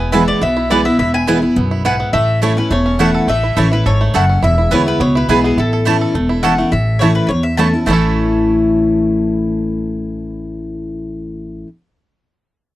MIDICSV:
0, 0, Header, 1, 6, 480
1, 0, Start_track
1, 0, Key_signature, 3, "major"
1, 0, Tempo, 286944
1, 1658, Time_signature, 4, 2, 24, 8
1, 21330, End_track
2, 0, Start_track
2, 0, Title_t, "Mandolin"
2, 0, Program_c, 0, 25
2, 0, Note_on_c, 0, 80, 106
2, 192, Note_off_c, 0, 80, 0
2, 207, Note_on_c, 0, 76, 82
2, 467, Note_on_c, 0, 74, 98
2, 469, Note_off_c, 0, 76, 0
2, 682, Note_off_c, 0, 74, 0
2, 711, Note_on_c, 0, 76, 99
2, 1183, Note_on_c, 0, 74, 99
2, 1199, Note_off_c, 0, 76, 0
2, 1412, Note_off_c, 0, 74, 0
2, 1425, Note_on_c, 0, 76, 89
2, 1639, Note_off_c, 0, 76, 0
2, 1659, Note_on_c, 0, 76, 92
2, 1890, Note_off_c, 0, 76, 0
2, 1911, Note_on_c, 0, 80, 103
2, 2126, Note_off_c, 0, 80, 0
2, 2147, Note_on_c, 0, 80, 85
2, 2820, Note_off_c, 0, 80, 0
2, 3110, Note_on_c, 0, 78, 103
2, 3557, Note_off_c, 0, 78, 0
2, 3564, Note_on_c, 0, 76, 101
2, 4016, Note_off_c, 0, 76, 0
2, 4062, Note_on_c, 0, 73, 82
2, 4308, Note_off_c, 0, 73, 0
2, 4315, Note_on_c, 0, 71, 84
2, 4525, Note_off_c, 0, 71, 0
2, 4552, Note_on_c, 0, 73, 92
2, 5025, Note_on_c, 0, 78, 99
2, 5037, Note_off_c, 0, 73, 0
2, 5466, Note_off_c, 0, 78, 0
2, 5512, Note_on_c, 0, 76, 101
2, 5991, Note_on_c, 0, 73, 86
2, 5996, Note_off_c, 0, 76, 0
2, 6230, Note_off_c, 0, 73, 0
2, 6236, Note_on_c, 0, 71, 83
2, 6456, Note_off_c, 0, 71, 0
2, 6462, Note_on_c, 0, 73, 97
2, 6904, Note_off_c, 0, 73, 0
2, 6953, Note_on_c, 0, 78, 100
2, 7424, Note_off_c, 0, 78, 0
2, 7431, Note_on_c, 0, 76, 88
2, 7912, Note_on_c, 0, 73, 90
2, 7915, Note_off_c, 0, 76, 0
2, 8154, Note_off_c, 0, 73, 0
2, 8160, Note_on_c, 0, 71, 93
2, 8371, Note_off_c, 0, 71, 0
2, 8377, Note_on_c, 0, 73, 101
2, 8629, Note_off_c, 0, 73, 0
2, 8648, Note_on_c, 0, 71, 87
2, 8871, Note_off_c, 0, 71, 0
2, 8879, Note_on_c, 0, 68, 80
2, 9096, Note_off_c, 0, 68, 0
2, 9126, Note_on_c, 0, 68, 72
2, 9327, Note_off_c, 0, 68, 0
2, 9360, Note_on_c, 0, 69, 77
2, 10716, Note_off_c, 0, 69, 0
2, 10754, Note_on_c, 0, 78, 98
2, 11232, Note_off_c, 0, 78, 0
2, 11239, Note_on_c, 0, 76, 87
2, 11696, Note_on_c, 0, 73, 84
2, 11737, Note_off_c, 0, 76, 0
2, 11941, Note_off_c, 0, 73, 0
2, 11960, Note_on_c, 0, 71, 84
2, 12138, Note_off_c, 0, 71, 0
2, 12158, Note_on_c, 0, 71, 68
2, 12188, Note_on_c, 0, 73, 101
2, 12211, Note_off_c, 0, 71, 0
2, 12428, Note_off_c, 0, 73, 0
2, 12432, Note_on_c, 0, 76, 86
2, 12662, Note_off_c, 0, 76, 0
2, 12669, Note_on_c, 0, 81, 104
2, 13016, Note_off_c, 0, 81, 0
2, 13164, Note_on_c, 0, 81, 81
2, 19453, Note_off_c, 0, 81, 0
2, 21330, End_track
3, 0, Start_track
3, 0, Title_t, "Mandolin"
3, 0, Program_c, 1, 25
3, 205, Note_on_c, 1, 59, 80
3, 215, Note_on_c, 1, 64, 88
3, 223, Note_on_c, 1, 71, 94
3, 226, Note_on_c, 1, 80, 100
3, 368, Note_off_c, 1, 59, 0
3, 372, Note_off_c, 1, 64, 0
3, 376, Note_off_c, 1, 71, 0
3, 378, Note_off_c, 1, 80, 0
3, 1179, Note_on_c, 1, 59, 75
3, 1185, Note_on_c, 1, 64, 80
3, 1194, Note_on_c, 1, 71, 90
3, 1198, Note_on_c, 1, 80, 94
3, 1334, Note_off_c, 1, 59, 0
3, 1337, Note_off_c, 1, 64, 0
3, 1342, Note_off_c, 1, 71, 0
3, 1344, Note_off_c, 1, 80, 0
3, 2129, Note_on_c, 1, 59, 79
3, 2139, Note_on_c, 1, 64, 93
3, 2144, Note_on_c, 1, 71, 86
3, 2153, Note_on_c, 1, 80, 101
3, 2289, Note_off_c, 1, 59, 0
3, 2294, Note_off_c, 1, 64, 0
3, 2296, Note_off_c, 1, 71, 0
3, 2301, Note_off_c, 1, 80, 0
3, 3093, Note_on_c, 1, 59, 80
3, 3097, Note_on_c, 1, 64, 91
3, 3106, Note_on_c, 1, 71, 84
3, 3109, Note_on_c, 1, 80, 82
3, 3251, Note_off_c, 1, 59, 0
3, 3253, Note_off_c, 1, 64, 0
3, 3257, Note_off_c, 1, 71, 0
3, 3259, Note_off_c, 1, 80, 0
3, 4042, Note_on_c, 1, 57, 84
3, 4051, Note_on_c, 1, 64, 84
3, 4059, Note_on_c, 1, 73, 95
3, 4064, Note_on_c, 1, 81, 106
3, 4205, Note_off_c, 1, 57, 0
3, 4209, Note_off_c, 1, 64, 0
3, 4213, Note_off_c, 1, 73, 0
3, 4216, Note_off_c, 1, 81, 0
3, 5002, Note_on_c, 1, 57, 86
3, 5011, Note_on_c, 1, 64, 80
3, 5017, Note_on_c, 1, 73, 92
3, 5027, Note_on_c, 1, 81, 92
3, 5164, Note_off_c, 1, 57, 0
3, 5169, Note_off_c, 1, 64, 0
3, 5172, Note_off_c, 1, 73, 0
3, 5177, Note_off_c, 1, 81, 0
3, 5963, Note_on_c, 1, 57, 84
3, 5969, Note_on_c, 1, 64, 83
3, 5977, Note_on_c, 1, 73, 96
3, 5985, Note_on_c, 1, 81, 100
3, 6124, Note_off_c, 1, 57, 0
3, 6127, Note_off_c, 1, 64, 0
3, 6131, Note_off_c, 1, 73, 0
3, 6135, Note_off_c, 1, 81, 0
3, 6921, Note_on_c, 1, 57, 85
3, 6933, Note_on_c, 1, 64, 90
3, 6937, Note_on_c, 1, 73, 79
3, 6947, Note_on_c, 1, 81, 89
3, 7082, Note_off_c, 1, 57, 0
3, 7089, Note_off_c, 1, 64, 0
3, 7090, Note_off_c, 1, 73, 0
3, 7095, Note_off_c, 1, 81, 0
3, 7877, Note_on_c, 1, 59, 84
3, 7882, Note_on_c, 1, 64, 88
3, 7889, Note_on_c, 1, 71, 87
3, 7896, Note_on_c, 1, 80, 110
3, 8040, Note_off_c, 1, 59, 0
3, 8042, Note_off_c, 1, 64, 0
3, 8046, Note_off_c, 1, 71, 0
3, 8049, Note_off_c, 1, 80, 0
3, 8842, Note_on_c, 1, 59, 70
3, 8851, Note_on_c, 1, 64, 84
3, 8858, Note_on_c, 1, 71, 91
3, 8860, Note_on_c, 1, 80, 98
3, 9002, Note_off_c, 1, 59, 0
3, 9006, Note_off_c, 1, 64, 0
3, 9010, Note_off_c, 1, 71, 0
3, 9011, Note_off_c, 1, 80, 0
3, 9792, Note_on_c, 1, 57, 78
3, 9801, Note_on_c, 1, 64, 85
3, 9809, Note_on_c, 1, 73, 91
3, 9816, Note_on_c, 1, 81, 99
3, 9956, Note_off_c, 1, 57, 0
3, 9960, Note_off_c, 1, 64, 0
3, 9964, Note_off_c, 1, 73, 0
3, 9968, Note_off_c, 1, 81, 0
3, 10758, Note_on_c, 1, 57, 73
3, 10765, Note_on_c, 1, 64, 83
3, 10772, Note_on_c, 1, 73, 94
3, 10780, Note_on_c, 1, 81, 92
3, 10918, Note_off_c, 1, 57, 0
3, 10922, Note_off_c, 1, 64, 0
3, 10926, Note_off_c, 1, 73, 0
3, 10930, Note_off_c, 1, 81, 0
3, 11721, Note_on_c, 1, 57, 91
3, 11730, Note_on_c, 1, 64, 86
3, 11736, Note_on_c, 1, 73, 91
3, 11741, Note_on_c, 1, 81, 93
3, 11880, Note_off_c, 1, 57, 0
3, 11884, Note_off_c, 1, 64, 0
3, 11887, Note_off_c, 1, 73, 0
3, 11890, Note_off_c, 1, 81, 0
3, 12677, Note_on_c, 1, 57, 78
3, 12684, Note_on_c, 1, 64, 82
3, 12688, Note_on_c, 1, 73, 95
3, 12698, Note_on_c, 1, 81, 97
3, 12838, Note_off_c, 1, 57, 0
3, 12841, Note_off_c, 1, 64, 0
3, 12843, Note_off_c, 1, 73, 0
3, 12848, Note_off_c, 1, 81, 0
3, 13150, Note_on_c, 1, 57, 80
3, 13172, Note_on_c, 1, 64, 88
3, 13188, Note_on_c, 1, 73, 86
3, 13211, Note_on_c, 1, 81, 91
3, 19512, Note_off_c, 1, 57, 0
3, 19523, Note_off_c, 1, 64, 0
3, 19532, Note_off_c, 1, 73, 0
3, 19543, Note_off_c, 1, 81, 0
3, 21330, End_track
4, 0, Start_track
4, 0, Title_t, "Five-string banjo"
4, 0, Program_c, 2, 105
4, 0, Note_on_c, 2, 59, 62
4, 0, Note_on_c, 2, 64, 71
4, 206, Note_on_c, 2, 52, 60
4, 460, Note_off_c, 2, 64, 0
4, 460, Note_on_c, 2, 64, 54
4, 649, Note_off_c, 2, 59, 0
4, 693, Note_on_c, 2, 59, 60
4, 947, Note_off_c, 2, 64, 0
4, 947, Note_on_c, 2, 64, 63
4, 1176, Note_off_c, 2, 64, 0
4, 1176, Note_on_c, 2, 64, 67
4, 1374, Note_off_c, 2, 59, 0
4, 1428, Note_on_c, 2, 59, 60
4, 1654, Note_off_c, 2, 64, 0
4, 1661, Note_on_c, 2, 64, 63
4, 1899, Note_off_c, 2, 64, 0
4, 1905, Note_on_c, 2, 64, 59
4, 2092, Note_off_c, 2, 59, 0
4, 2135, Note_on_c, 2, 59, 53
4, 2383, Note_off_c, 2, 64, 0
4, 2390, Note_on_c, 2, 64, 55
4, 2548, Note_off_c, 2, 52, 0
4, 2598, Note_off_c, 2, 59, 0
4, 2618, Note_on_c, 2, 59, 63
4, 2858, Note_off_c, 2, 64, 0
4, 2865, Note_on_c, 2, 64, 64
4, 3087, Note_off_c, 2, 64, 0
4, 3094, Note_on_c, 2, 64, 62
4, 3296, Note_off_c, 2, 59, 0
4, 3344, Note_on_c, 2, 59, 60
4, 3572, Note_off_c, 2, 59, 0
4, 3579, Note_on_c, 2, 57, 77
4, 4033, Note_off_c, 2, 57, 0
4, 4053, Note_on_c, 2, 57, 56
4, 4298, Note_on_c, 2, 61, 54
4, 4510, Note_off_c, 2, 57, 0
4, 4530, Note_on_c, 2, 57, 68
4, 4760, Note_off_c, 2, 61, 0
4, 4780, Note_on_c, 2, 61, 65
4, 5010, Note_off_c, 2, 64, 0
4, 5016, Note_on_c, 2, 64, 63
4, 5211, Note_off_c, 2, 57, 0
4, 5260, Note_on_c, 2, 69, 60
4, 5446, Note_off_c, 2, 61, 0
4, 5487, Note_on_c, 2, 57, 77
4, 5738, Note_off_c, 2, 64, 0
4, 5744, Note_on_c, 2, 64, 58
4, 5926, Note_off_c, 2, 69, 0
4, 5968, Note_on_c, 2, 69, 58
4, 6169, Note_off_c, 2, 57, 0
4, 6209, Note_off_c, 2, 64, 0
4, 6216, Note_on_c, 2, 64, 59
4, 6435, Note_off_c, 2, 69, 0
4, 6455, Note_on_c, 2, 69, 63
4, 6706, Note_on_c, 2, 57, 69
4, 6912, Note_off_c, 2, 69, 0
4, 6932, Note_on_c, 2, 69, 66
4, 7183, Note_on_c, 2, 61, 64
4, 7368, Note_off_c, 2, 57, 0
4, 7397, Note_off_c, 2, 64, 0
4, 7404, Note_on_c, 2, 64, 69
4, 7412, Note_off_c, 2, 69, 0
4, 7413, Note_off_c, 2, 61, 0
4, 7653, Note_off_c, 2, 64, 0
4, 7660, Note_on_c, 2, 64, 59
4, 7887, Note_on_c, 2, 59, 57
4, 8129, Note_off_c, 2, 64, 0
4, 8135, Note_on_c, 2, 64, 58
4, 8346, Note_off_c, 2, 59, 0
4, 8366, Note_on_c, 2, 59, 67
4, 8614, Note_off_c, 2, 64, 0
4, 8620, Note_on_c, 2, 64, 64
4, 8845, Note_off_c, 2, 64, 0
4, 8852, Note_on_c, 2, 64, 69
4, 9046, Note_off_c, 2, 59, 0
4, 9103, Note_on_c, 2, 59, 67
4, 9324, Note_off_c, 2, 64, 0
4, 9330, Note_on_c, 2, 64, 63
4, 9332, Note_off_c, 2, 59, 0
4, 9584, Note_on_c, 2, 69, 57
4, 9815, Note_on_c, 2, 57, 55
4, 10008, Note_off_c, 2, 64, 0
4, 10038, Note_off_c, 2, 69, 0
4, 10058, Note_on_c, 2, 69, 61
4, 10267, Note_off_c, 2, 57, 0
4, 10287, Note_on_c, 2, 57, 59
4, 10528, Note_on_c, 2, 64, 62
4, 10722, Note_off_c, 2, 69, 0
4, 10763, Note_on_c, 2, 69, 64
4, 10966, Note_off_c, 2, 57, 0
4, 11012, Note_on_c, 2, 57, 64
4, 11196, Note_off_c, 2, 64, 0
4, 11245, Note_off_c, 2, 57, 0
4, 11245, Note_off_c, 2, 69, 0
4, 11731, Note_on_c, 2, 57, 57
4, 11735, Note_on_c, 2, 61, 56
4, 11747, Note_on_c, 2, 64, 62
4, 11838, Note_off_c, 2, 57, 0
4, 11842, Note_off_c, 2, 61, 0
4, 11844, Note_off_c, 2, 64, 0
4, 12696, Note_on_c, 2, 57, 72
4, 12707, Note_on_c, 2, 61, 69
4, 12710, Note_on_c, 2, 64, 70
4, 12802, Note_off_c, 2, 57, 0
4, 12803, Note_off_c, 2, 61, 0
4, 12808, Note_off_c, 2, 64, 0
4, 13162, Note_on_c, 2, 57, 81
4, 13195, Note_on_c, 2, 61, 75
4, 13231, Note_on_c, 2, 64, 82
4, 13264, Note_on_c, 2, 69, 78
4, 19451, Note_off_c, 2, 57, 0
4, 19468, Note_off_c, 2, 61, 0
4, 19486, Note_off_c, 2, 64, 0
4, 19503, Note_off_c, 2, 69, 0
4, 21330, End_track
5, 0, Start_track
5, 0, Title_t, "Steel-string acoustic guitar"
5, 0, Program_c, 3, 25
5, 0, Note_on_c, 3, 40, 85
5, 213, Note_on_c, 3, 52, 85
5, 231, Note_on_c, 3, 56, 88
5, 241, Note_on_c, 3, 59, 101
5, 245, Note_on_c, 3, 64, 86
5, 654, Note_off_c, 3, 40, 0
5, 673, Note_off_c, 3, 52, 0
5, 681, Note_off_c, 3, 56, 0
5, 686, Note_off_c, 3, 59, 0
5, 688, Note_off_c, 3, 64, 0
5, 695, Note_on_c, 3, 47, 90
5, 1185, Note_on_c, 3, 52, 94
5, 1191, Note_on_c, 3, 56, 93
5, 1200, Note_on_c, 3, 59, 87
5, 1202, Note_on_c, 3, 64, 86
5, 1420, Note_off_c, 3, 52, 0
5, 1423, Note_off_c, 3, 56, 0
5, 1425, Note_off_c, 3, 64, 0
5, 1428, Note_off_c, 3, 59, 0
5, 1445, Note_on_c, 3, 64, 62
5, 1470, Note_on_c, 3, 59, 47
5, 1610, Note_off_c, 3, 47, 0
5, 1658, Note_off_c, 3, 64, 0
5, 1666, Note_on_c, 3, 40, 90
5, 1670, Note_off_c, 3, 59, 0
5, 2136, Note_on_c, 3, 52, 78
5, 2141, Note_on_c, 3, 56, 83
5, 2154, Note_on_c, 3, 59, 92
5, 2157, Note_on_c, 3, 64, 98
5, 2351, Note_off_c, 3, 64, 0
5, 2371, Note_on_c, 3, 64, 59
5, 2375, Note_off_c, 3, 52, 0
5, 2378, Note_off_c, 3, 56, 0
5, 2380, Note_off_c, 3, 59, 0
5, 2400, Note_on_c, 3, 59, 48
5, 2575, Note_off_c, 3, 40, 0
5, 2601, Note_off_c, 3, 64, 0
5, 2614, Note_on_c, 3, 42, 89
5, 2615, Note_off_c, 3, 59, 0
5, 3072, Note_off_c, 3, 42, 0
5, 3101, Note_on_c, 3, 44, 90
5, 3555, Note_off_c, 3, 44, 0
5, 3570, Note_on_c, 3, 45, 94
5, 4047, Note_on_c, 3, 52, 81
5, 4057, Note_on_c, 3, 57, 94
5, 4061, Note_on_c, 3, 61, 90
5, 4065, Note_on_c, 3, 64, 93
5, 4277, Note_off_c, 3, 64, 0
5, 4290, Note_off_c, 3, 52, 0
5, 4295, Note_off_c, 3, 57, 0
5, 4297, Note_off_c, 3, 61, 0
5, 4297, Note_on_c, 3, 64, 69
5, 4323, Note_on_c, 3, 61, 59
5, 4486, Note_off_c, 3, 45, 0
5, 4522, Note_off_c, 3, 64, 0
5, 4525, Note_on_c, 3, 40, 93
5, 4535, Note_off_c, 3, 61, 0
5, 5006, Note_on_c, 3, 52, 81
5, 5017, Note_on_c, 3, 57, 91
5, 5022, Note_on_c, 3, 61, 81
5, 5030, Note_on_c, 3, 64, 88
5, 5443, Note_off_c, 3, 40, 0
5, 5467, Note_off_c, 3, 52, 0
5, 5472, Note_off_c, 3, 57, 0
5, 5475, Note_off_c, 3, 61, 0
5, 5479, Note_off_c, 3, 64, 0
5, 5495, Note_on_c, 3, 45, 89
5, 5964, Note_on_c, 3, 52, 82
5, 5971, Note_on_c, 3, 57, 81
5, 5982, Note_on_c, 3, 61, 93
5, 5992, Note_on_c, 3, 64, 98
5, 6208, Note_off_c, 3, 52, 0
5, 6211, Note_off_c, 3, 57, 0
5, 6216, Note_off_c, 3, 61, 0
5, 6221, Note_off_c, 3, 64, 0
5, 6239, Note_on_c, 3, 64, 65
5, 6262, Note_on_c, 3, 61, 60
5, 6407, Note_off_c, 3, 45, 0
5, 6452, Note_off_c, 3, 64, 0
5, 6464, Note_off_c, 3, 61, 0
5, 6465, Note_on_c, 3, 44, 85
5, 6915, Note_off_c, 3, 44, 0
5, 6943, Note_on_c, 3, 42, 88
5, 7394, Note_off_c, 3, 42, 0
5, 7421, Note_on_c, 3, 40, 102
5, 7882, Note_on_c, 3, 52, 86
5, 7895, Note_on_c, 3, 56, 98
5, 7898, Note_on_c, 3, 59, 98
5, 7909, Note_on_c, 3, 64, 96
5, 8329, Note_off_c, 3, 40, 0
5, 8343, Note_off_c, 3, 52, 0
5, 8349, Note_off_c, 3, 56, 0
5, 8351, Note_off_c, 3, 59, 0
5, 8356, Note_off_c, 3, 64, 0
5, 8372, Note_on_c, 3, 47, 96
5, 8847, Note_on_c, 3, 52, 85
5, 8856, Note_on_c, 3, 56, 87
5, 8864, Note_on_c, 3, 59, 93
5, 8876, Note_on_c, 3, 64, 103
5, 9283, Note_off_c, 3, 47, 0
5, 9305, Note_off_c, 3, 52, 0
5, 9309, Note_off_c, 3, 56, 0
5, 9313, Note_off_c, 3, 59, 0
5, 9319, Note_off_c, 3, 64, 0
5, 9336, Note_on_c, 3, 45, 84
5, 9803, Note_on_c, 3, 52, 85
5, 9817, Note_on_c, 3, 57, 89
5, 9830, Note_on_c, 3, 61, 85
5, 9831, Note_on_c, 3, 64, 97
5, 10245, Note_off_c, 3, 45, 0
5, 10262, Note_off_c, 3, 52, 0
5, 10269, Note_off_c, 3, 57, 0
5, 10276, Note_off_c, 3, 61, 0
5, 10276, Note_off_c, 3, 64, 0
5, 10289, Note_on_c, 3, 40, 88
5, 10756, Note_on_c, 3, 52, 78
5, 10770, Note_on_c, 3, 57, 101
5, 10776, Note_on_c, 3, 61, 77
5, 10786, Note_on_c, 3, 64, 99
5, 10998, Note_off_c, 3, 64, 0
5, 11000, Note_off_c, 3, 52, 0
5, 11007, Note_off_c, 3, 57, 0
5, 11010, Note_off_c, 3, 61, 0
5, 11019, Note_on_c, 3, 64, 60
5, 11044, Note_on_c, 3, 61, 52
5, 11201, Note_off_c, 3, 40, 0
5, 11239, Note_off_c, 3, 64, 0
5, 11252, Note_off_c, 3, 61, 0
5, 11258, Note_on_c, 3, 45, 86
5, 11735, Note_on_c, 3, 52, 92
5, 11736, Note_on_c, 3, 57, 79
5, 11750, Note_on_c, 3, 61, 83
5, 11756, Note_on_c, 3, 64, 100
5, 12166, Note_off_c, 3, 45, 0
5, 12187, Note_off_c, 3, 52, 0
5, 12188, Note_off_c, 3, 57, 0
5, 12195, Note_off_c, 3, 61, 0
5, 12198, Note_off_c, 3, 64, 0
5, 12219, Note_on_c, 3, 40, 82
5, 12678, Note_on_c, 3, 52, 83
5, 12690, Note_on_c, 3, 57, 95
5, 12699, Note_on_c, 3, 61, 93
5, 12704, Note_on_c, 3, 64, 86
5, 12920, Note_off_c, 3, 64, 0
5, 12921, Note_off_c, 3, 52, 0
5, 12927, Note_off_c, 3, 57, 0
5, 12931, Note_off_c, 3, 61, 0
5, 12940, Note_on_c, 3, 64, 56
5, 12959, Note_on_c, 3, 61, 53
5, 13127, Note_off_c, 3, 40, 0
5, 13151, Note_on_c, 3, 45, 82
5, 13160, Note_off_c, 3, 64, 0
5, 13165, Note_on_c, 3, 52, 85
5, 13169, Note_off_c, 3, 61, 0
5, 13173, Note_on_c, 3, 57, 92
5, 13187, Note_on_c, 3, 61, 97
5, 13191, Note_on_c, 3, 64, 92
5, 19513, Note_off_c, 3, 45, 0
5, 19520, Note_off_c, 3, 52, 0
5, 19524, Note_off_c, 3, 57, 0
5, 19531, Note_off_c, 3, 61, 0
5, 19533, Note_off_c, 3, 64, 0
5, 21330, End_track
6, 0, Start_track
6, 0, Title_t, "Upright bass"
6, 0, Program_c, 4, 32
6, 0, Note_on_c, 4, 28, 97
6, 498, Note_off_c, 4, 28, 0
6, 698, Note_on_c, 4, 35, 82
6, 1462, Note_off_c, 4, 35, 0
6, 1653, Note_on_c, 4, 28, 92
6, 2419, Note_off_c, 4, 28, 0
6, 2615, Note_on_c, 4, 35, 88
6, 3380, Note_off_c, 4, 35, 0
6, 3565, Note_on_c, 4, 33, 89
6, 4333, Note_off_c, 4, 33, 0
6, 4524, Note_on_c, 4, 28, 80
6, 5292, Note_off_c, 4, 28, 0
6, 5475, Note_on_c, 4, 33, 89
6, 5864, Note_off_c, 4, 33, 0
6, 5967, Note_on_c, 4, 33, 94
6, 6377, Note_off_c, 4, 33, 0
6, 6452, Note_on_c, 4, 32, 91
6, 6860, Note_off_c, 4, 32, 0
6, 6929, Note_on_c, 4, 30, 85
6, 7338, Note_off_c, 4, 30, 0
6, 7403, Note_on_c, 4, 28, 89
6, 7788, Note_off_c, 4, 28, 0
6, 7889, Note_on_c, 4, 38, 81
6, 8297, Note_off_c, 4, 38, 0
6, 8370, Note_on_c, 4, 37, 88
6, 8778, Note_off_c, 4, 37, 0
6, 8845, Note_on_c, 4, 35, 92
6, 9254, Note_off_c, 4, 35, 0
6, 9325, Note_on_c, 4, 33, 94
6, 10090, Note_off_c, 4, 33, 0
6, 10278, Note_on_c, 4, 28, 89
6, 11046, Note_off_c, 4, 28, 0
6, 11239, Note_on_c, 4, 33, 97
6, 12006, Note_off_c, 4, 33, 0
6, 12193, Note_on_c, 4, 40, 85
6, 12963, Note_off_c, 4, 40, 0
6, 13156, Note_on_c, 4, 33, 88
6, 19448, Note_off_c, 4, 33, 0
6, 21330, End_track
0, 0, End_of_file